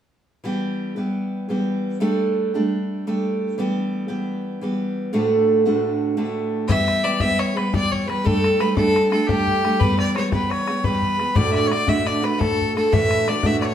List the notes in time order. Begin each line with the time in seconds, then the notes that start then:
0.44 E3 G3 B3 G4
0.96 E3 G3 B3 G4
1.49 E3 G3 B3 G4
2.00 G3 A3 D4 G4
2.54 G3 A3 D4 G4
3.07 G3 A3 D4 G4
3.58 E3 G3 B3 G4
4.08 E3 G3 B3 G4
4.61 E3 G3 B3 G4
5.13 D2 A2 D3 A3 D4 F#4
5.65 D2 A2 D3 A3 D4 F#4
6.17 D2 A2 D3 A3 D4 F#4
6.68 E3 G3 B3 G4 E5, bodhran
6.88 bodhran
7.03 E3 G3 B3 G4 D5, bodhran
7.20 E3 G3 B3 G4 E5, bodhran
7.39 C#5, bodhran
7.55 G3 B3 G4 B4, bodhran
7.72 E3 G3 B3 G4 D5, bodhran
7.92 C#5, bodhran
8.07 E3 G3 B3 G4 B4, bodhran
8.24 G3 A3 D4 G4 A4, bodhran
8.44 bodhran
8.59 G3 A3 D4 G4 B4, bodhran
8.76 G3 A3 D4 G4 A4, bodhran
8.96 bodhran
9.11 A3 D4 G4 A4, bodhran
9.27 G3 A3 D4 G4, bodhran
9.47 bodhran
9.64 G3 A3 D4 G4, bodhran
9.80 E3 G3 B3 G4 B4, bodhran
9.99 D5, bodhran
10.16 E3 G3 B3 G4 C#5, bodhran
10.32 E3 G3 B3 G4 B4, bodhran
10.50 C#5, bodhran
10.68 G3 B3 G4, bodhran
10.84 E3 G3 B3 G4 B4, bodhran
11.02 bodhran
11.18 E3 G3 B3 G4, bodhran
11.35 D2 A2 D3 A3 D4 F#4 D5, bodhran
11.52 D5 E5, bodhran
11.67 D3 A3 C#5
11.72 D4 F#4 D5, bodhran
11.86 D2 A2 D3 A3 D4 F#4 E5, bodhran
12.06 D5, bodhran
12.22 D3 A3 D4 F#4 B4, bodhran
12.38 D2 A2 D3 A3 D4 F#4 A4, bodhran
12.61 bodhran
12.75 D3 A3 D4 F#4 A4, bodhran
12.92 D2 A2 E3 A3 D4 F#4 E5, bodhran
13.11 bodhran
13.27 E3 A3 D4 F#4 D5, bodhran
13.43 D2 A2 E3 A3 D4 F#4 E5, bodhran
13.61 D5, bodhran
13.65 C#5